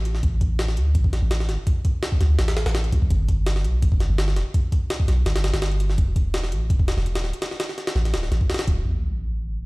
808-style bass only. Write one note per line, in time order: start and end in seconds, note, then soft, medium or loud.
0.00 0.22 A1 medium
0.23 0.79 A1 loud
0.77 0.96 D2 medium
0.95 1.21 A1 loud
1.22 1.50 A1 loud
1.49 1.57 G1 loud
2.21 2.37 D2 medium
2.39 2.65 A1 medium
2.66 2.92 A1 medium
2.93 3.09 C2 medium
3.10 3.66 G1 loud
3.64 3.84 B1 loud
3.82 4.08 G1 loud
4.10 4.38 G1 loud
4.36 4.45 E1 loud
5.08 5.24 B1 loud
5.26 5.52 G1 medium
5.53 5.97 G1 medium
5.98 6.53 E1 loud
6.52 6.71 A1 medium
6.70 6.96 E1 loud
6.97 7.25 E1 loud
7.24 7.32 D1 loud
7.96 8.15 A1 loud
8.14 8.30 D1 medium
8.31 8.40 A1 loud
8.67 8.84 D1 loud
8.85 9.66 A1 medium